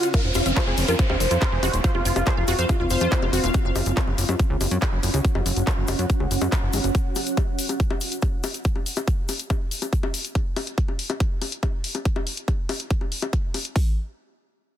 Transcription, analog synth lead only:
0.14 0.20 A#4 loud
0.25 0.31 C4 medium
0.35 0.42 C4 medium
0.46 0.52 C4 medium
0.56 0.63 C5 loud
0.67 0.73 C4 medium
0.78 0.84 C4 medium
0.88 0.95 A#4 medium
0.99 1.05 C4 medium
1.10 1.16 C4 medium
1.20 1.76 C5 loud
1.84 1.90 C5 loud
1.95 2.01 F4 medium
2.05 2.12 F4 medium
2.16 2.22 F4 medium
2.27 2.33 C5 loud
2.37 2.44 F4 medium
2.48 2.54 F4 medium
2.59 2.65 C5 medium
2.69 2.76 F4 medium
2.80 2.86 F4 medium
2.90 3.46 C5 loud

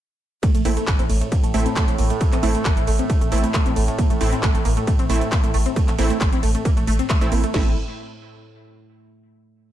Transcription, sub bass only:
0.55 0.65 A1 medium
0.65 0.77 A1 loud
0.87 0.98 A1 medium
0.99 1.09 A1 medium
1.10 1.21 A1 loud
1.44 1.53 A1 medium
1.54 1.66 A1 loud
1.88 1.98 A1 medium
1.98 2.10 A1 loud
2.32 2.42 A1 medium
2.43 2.54 A1 loud
2.65 2.76 A1 medium
2.77 2.87 A1 medium
2.87 2.99 A1 loud
3.21 3.31 A1 medium
3.32 3.43 A1 loud
3.66 3.76 A1 medium
3.76 3.88 A1 loud
4.10 4.20 A1 medium
4.21 4.32 A1 loud
4.43 4.54 A1 medium
4.55 4.65 A1 medium
4.65 4.77 A1 loud
4.99 5.09 A1 medium
5.10 5.21 A1 loud
5.44 5.53 A1 medium
5.54 5.66 A1 loud
5.88 5.98 A1 medium
5.98 6.10 A1 loud
6.21 6.32 A1 medium
6.32 6.42 A1 medium
6.43 6.54 A1 loud
6.77 6.87 A1 medium
6.87 6.99 A1 loud
7.21 7.31 A1 medium
7.32 7.43 A1 loud
7.54 7.75 A1 loud

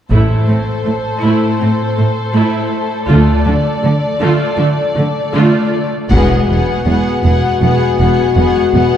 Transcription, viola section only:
0.10 0.46 A3 soft
0.10 0.46 E4 soft
0.48 0.56 A3 soft
0.48 0.56 C4 soft
0.85 0.93 A3 soft
1.23 1.58 A3 soft
1.23 1.58 E4 soft
1.60 1.68 A3 soft
1.60 1.68 C4 soft
1.98 2.06 A3 soft
2.35 2.70 A3 soft
2.35 2.70 E4 soft
3.09 3.44 A3 soft
3.09 3.44 F4 soft
3.45 3.53 A3 soft
3.45 3.54 D4 soft
3.84 3.92 A3 soft
4.20 4.56 A3 medium
4.20 4.56 F4 soft
4.58 4.66 A3 soft
4.58 4.66 D4 soft
4.96 5.04 A3 soft
5.34 5.70 A3 medium
5.34 5.70 F4 medium
6.11 6.46 B3 soft
6.49 6.86 B3 soft
6.87 7.23 B3 soft
7.24 7.61 B3 soft
7.62 7.98 B3 soft
7.99 8.35 B3 soft
8.37 8.73 B3 soft
8.74 8.97 B3 soft

